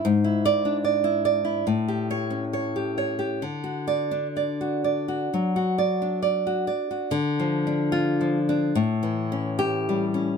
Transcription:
\new Staff \with { instrumentName = "Nylon-string guitar" } { \time 4/4 \key d \major \tempo 4 = 72 << { r8 d''8 r4. cis''8 r4 | r8 d''8 r2. | \key d \minor r4 f'8 r4. g'8 r8 | } \\ { gis,16 e'8 d'16 d''16 e'16 d''16 e'16 a,16 g'8 cis'16 cis''16 g'16 cis''16 g'16 | d16 fis'8 d'16 d''16 fis'16 d''16 fis'16 fis16 fis'16 d''16 d'16 d''16 fis'16 d''16 fis'16 | \tuplet 3/2 { d8 f8 d'8~ d'8 f8 d'8 a,8 e8 cis'8~ cis'8 g8 cis'8 } | } >> }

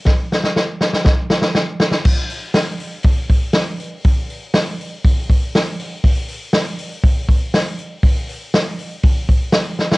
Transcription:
\new DrumStaff \with { instrumentName = "Drums" } \drummode { \time 4/4 \tempo 4 = 120 <bd sn>8 sn16 sn16 sn8 sn16 sn16 <bd sn>8 sn16 sn16 sn8 sn16 sn16 | <cymc bd>8 hho8 <hho sn>8 hho8 <hho bd>8 <hho bd>8 <hho sn>8 hho8 | <hho bd>8 hho8 <hho sn>8 hho8 <hho bd>8 <hho bd>8 <hho sn>8 hho8 | <hho bd>8 hho8 <hho sn>8 hho8 <hho bd>8 <hho bd>8 <hho sn>8 hho8 |
<hho bd>8 hho8 <hho sn>8 hho8 <hho bd>8 <hho bd>8 <hho sn>8 sn16 sn16 | }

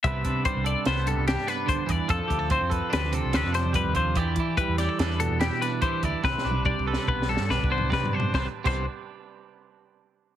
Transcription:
<<
  \new Staff \with { instrumentName = "Clean electric guitar" } { \time 5/4 \key c \major \tempo 4 = 144 e''4 c''8 d''8 c''8 a'8 g'8 b'8 c''8 d''8 | a'4 c''8 b'8 b'8 a'8 b'8 c''8 b'8 c''8 | d''4 b'8 d''8 b'8 a'8 g'8 b'8 c''8 d''8 | b'4 d''8 b'8 b'8 a'8 b'8 c''8 b'8 c''8 |
c''16 r8 c''8 r2. r8. | }
  \new Staff \with { instrumentName = "Clean electric guitar" } { \time 5/4 \key c \major << { <g b d' b'>8 d'4 a'8 b4 d'8 b4. | a'8 g'16 a'8. a'8 d'4 a'8 d'4. | g'8 e'4 g'16 a'16 d'4 e'8 d'8 g'8 e'8 | b'8 d'4 a'8 b4 d'8 b8 d''8 d'8 |
<g b d' b'>16 r8 <g b d' b'>8 r2. r8. | } \\ { c4 g4. g,4. d8 e8 | f4 c'4. c4. g8 f8 | e4 g4. b,4. e4 | c4 g4. g,4. c4 |
c16 r8 c8 r2. r8. | } >> }
  \new Staff \with { instrumentName = "Picked electric bass" } { \clef bass \time 5/4 \key c \major c,8 c8 r16 c,8 r16 c,8. c,8 r4 r16 e,16 r16 | f,16 r16 d,8. f,8 r16 d,8. c,16 d,16 f,8 f,16 f,16 ees,8. | e,8 e8 r16 e,8 r16 e,8. e,8 r4 r16 d,16 r16 | c,16 r16 b,,8. c,8 r16 b,,8. g,16 b,,16 c,8 c,16 c,16 g,8. |
c,16 r8 c,8 r2. r8. | }
  \new DrumStaff \with { instrumentName = "Drums" } \drummode { \time 5/4 <hh bd>8 <hh bd>8 <hh bd>8 hh8 <hh sn>8 hh8 <hh sn>8 <hh sn>8 <hh bd>8 <hh bd>8 | <hh bd>8 <hh bd>8 <hh bd>8 <hh bd>8 <hh sn>8 hh8 <hh sn>8 <hh sn>8 <hh bd>8 <hh bd>8 | <hh bd>8 <hh bd>8 <hh bd>8 <hh sn>8 <hh sn>8 hh8 <hh sn>8 <hh sn>8 <hh bd>8 <hh bd>8 | \tuplet 3/2 { <bd sn>8 sn8 tommh8 <bd tommh>8 bd8 sn8 bd8 sn8 sn8 sn8 bd8 tomfh8 <bd sn>8 tomfh8 tomfh8 } |
<bd sn>8. <cymc bd>16 r4 r4 r4 r4 | }
>>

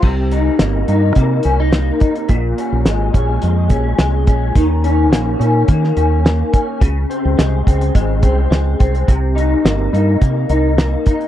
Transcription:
<<
  \new Staff \with { instrumentName = "Clean electric guitar" } { \time 4/4 \key c \phrygian \tempo 4 = 106 c8 ees'8 bes8 ees'8 bes8 des'16 ees'16 bes8 ees'8 | bes,8 des'8 aes8 des'8 aes8 des'8 aes8 des'8 | ees8 des'8 bes8 des'8 bes8 des'8 bes8 des'8 | des8 c'8 aes8 c'8 aes8 c'8 aes8 c'8 |
c8 ees'8 bes8 ees'8 bes8 ees'8 bes8 ees'8 | }
  \new Staff \with { instrumentName = "Fingered electric bass" } { \clef bass \time 4/4 \key c \phrygian c,4 g,,8 g,8 c8 c,4 r8 | bes,,8 r16 bes,,16 aes,,8 bes,,8 f,8 bes,,8 c,8 bes,,8 | ees,4 bes,,8 bes,8 ees8 ees,4 r8 | des,8 r16 des,16 c,8 des,8 aes,,8 c,8 des,8 c,8 |
c,4 g,,8 g,8 c8 c,4 r8 | }
  \new DrumStaff \with { instrumentName = "Drums" } \drummode { \time 4/4 <cymc bd>8 hh8 <hh sn>8 hh8 <hh bd>8 hh8 <hh sn>8 <hh bd>16 hh16 | <hh bd>8 hh8 <hh sn>8 <hh bd>8 hh8 <hh bd>8 <hh sn>8 <hh bd>8 | <hh bd>8 hh8 <hh sn>8 hh8 <hh bd>16 sn16 hh8 <hh sn>8 <hh bd>8 | <hh bd>8 hh8 <hh sn>8 <hh bd>16 hh16 <hh bd>8 <hh bd>8 <hh sn>8 <hh bd>16 hh16 |
<hh bd>8 hh8 <hh sn>8 hh8 <hh bd>8 hh8 <hh sn>8 <hh bd>16 hh16 | }
>>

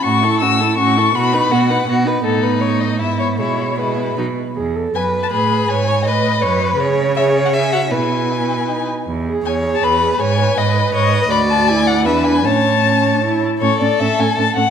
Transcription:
<<
  \new Staff \with { instrumentName = "Violin" } { \time 3/4 \key e \major \tempo 4 = 160 cis'''4 e'''4 cis'''4 | b''4 fis''4 r4 | a'8 b'8 cis''8 dis''8 e''8 cis''8 | cis''4 b'4. r8 |
r4 gis''8. a''16 b''4 | gis''4 dis''4 cis''8. b'16 | r4 e''8. fis''16 gis''8 fis''8 | gis''2~ gis''8 r8 |
r4 gis''8. a''16 b''4 | gis''4 dis''4 cis''8. b'16 | \key a \major b''8 a''8 gis''8 fis''8 e''8 gis''8 | a''2~ a''8 r8 |
cis''8 d''8 e''8 gis''8 a''8 fis''8 | }
  \new Staff \with { instrumentName = "Violin" } { \time 3/4 \key e \major fis'8 a'8 fis'8 a'8 fis'8 a'8 | fis'8 b'8 fis'8 b'8 fis'8 b'8 | dis'2 e'4 | e'4 e'4 dis'8 r8 |
r4 b'4 gis'4 | cis''4 b'2 | cis''4 cis''4 e''4 | b'2~ b'8 r8 |
r4 cis''4 b'4 | cis''4 b'4 dis''4 | \key a \major d''2 b'4 | cis''2~ cis''8 r8 |
a'2. | }
  \new Staff \with { instrumentName = "Viola" } { \time 3/4 \key e \major cis'8 e'8 cis'8 e'8 cis'8 e'8 | b8 dis'8 b8 dis'8 b8 dis'8 | b2 b4 | gis4 gis4 fis8 r8 |
gis'8 a'8 b'2 | b'8 cis''8 b'4 b'4 | gis'4 gis'4 gis'8 fis'8 | e'2 dis'8 r8 |
r8 gis'4 gis'4 gis'8 | b'8 b'4 b'4 b'8 | \key a \major fis'4 e'4 d'4 | cis'4 cis'8. d'16 e'4 |
cis'8 cis'8 cis'8 cis'8 cis'8 cis'8 | }
  \new Staff \with { instrumentName = "Cello" } { \clef bass \time 3/4 \key e \major a,4 a,4 a,4 | b,4 b,4 b,4 | a,2 gis,4 | b,2 b,8 r8 |
e,4 fis,4 a,4 | gis,4 a,4 fis,4 | cis2. | b,2~ b,8 r8 |
e,4 e,4 e,4 | gis,4 gis,4 gis,4 | \key a \major d,2 e,4 | a,2~ a,8 r8 |
a,8 a,8 a,8 a,8 a,8 a,8 | }
>>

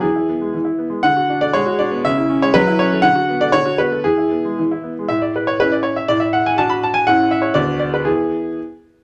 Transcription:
<<
  \new Staff \with { instrumentName = "Grand piano" } { \time 2/4 \key a \major \tempo 4 = 120 gis'4 r4 | fis''8. d''16 cis''8 d''8 | e''8. cis''16 b'8 cis''8 | fis''8. d''16 cis''8 b'8 |
gis'4 r4 | e''16 d''16 b'16 cis''16 b'16 d''16 cis''16 e''16 | d''16 e''16 fis''16 gis''16 a''16 b''16 a''16 gis''16 | fis''8 e''16 cis''16 d''8 d''16 b'16 |
gis'4 r4 | }
  \new Staff \with { instrumentName = "Grand piano" } { \time 2/4 \key a \major e16 e'16 b16 gis16 e16 e'16 b16 gis16 | d16 fis'16 d'16 a16 gis16 fis'16 d'16 b16 | cis16 e'16 cis'16 gis16 fis16 e'16 cis'16 a16 | d16 fis'16 b16 a16 d16 fis'16 b16 a16 |
e16 e'16 b16 gis16 e16 e'16 b16 gis16 | a,4 <cis' e'>4 | a,4 <d' fis'>4 | <a, cis' e'>4 <d, b fis'>4 |
<e b e'>4 r4 | }
>>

